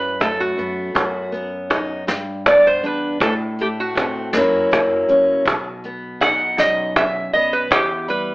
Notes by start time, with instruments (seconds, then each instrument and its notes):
Already playing: upright bass F#2, steel-string acoustic guitar F#2, resonator guitar played with a steel bar B4
0.20 steel-string acoustic guitar A3, resonator guitar played with a steel bar A4, cajon bass, cajon slap, closed hi-hat
0.40 resonator guitar played with a steel bar F#4
0.58 upright bass F#2, steel-string acoustic guitar B3, closed hi-hat
0.95 steel-string acoustic guitar F#2, upright bass F#2, kick, cajon bass, cajon slap, closed hi-hat
1.32 steel-string acoustic guitar B3, closed hi-hat
1.70 steel-string acoustic guitar D#4, kick, cajon bass, cajon slap, closed hi-hat
2.07 steel-string acoustic guitar G2, upright bass G2, snare, closed hi-hat
2.46 steel-string acoustic guitar B3, resonator guitar played with a steel bar D5, cajon bass, cajon slap, closed hi-hat
2.67 resonator guitar played with a steel bar C5
2.83 upright bass E2, steel-string acoustic guitar D4, resonator guitar played with a steel bar B4, closed hi-hat
3.20 upright bass A2, steel-string acoustic guitar A2, resonator guitar played with a steel bar A4, kick, cajon bass, cajon slap, closed hi-hat
3.58 steel-string acoustic guitar A3, resonator guitar played with a steel bar G4, closed hi-hat
3.80 resonator guitar played with a steel bar F#4
3.95 steel-string acoustic guitar C4, kick, cajon bass, cajon slap, closed hi-hat
4.33 steel-string acoustic guitar F#2 F#3 A#3 C#4 E4, upright bass F#2, snare, closed hi-hat
4.71 steel-string acoustic guitar A#3, cajon bass, cajon slap, closed hi-hat
5.08 upright bass F#2, steel-string acoustic guitar C#4, closed hi-hat
5.45 upright bass B1, steel-string acoustic guitar B2, kick, cajon bass, cajon slap, closed hi-hat
5.84 steel-string acoustic guitar B3, closed hi-hat
6.21 steel-string acoustic guitar D#4, resonator guitar played with a steel bar F#5, kick, cajon bass, cajon slap, closed hi-hat
6.41 cajon slap
6.58 upright bass B1, steel-string acoustic guitar F#2, resonator guitar played with a steel bar D#5, snare, closed hi-hat
6.96 resonator guitar played with a steel bar E5, cajon bass, cajon slap, closed hi-hat
7.33 upright bass B1, steel-string acoustic guitar B3, resonator guitar played with a steel bar D#5, closed hi-hat
7.53 resonator guitar played with a steel bar B4
7.71 upright bass E2, steel-string acoustic guitar E2, resonator guitar played with a steel bar G4, kick, cajon bass, cajon slap, closed hi-hat
8.08 steel-string acoustic guitar G3, resonator guitar played with a steel bar B4, closed hi-hat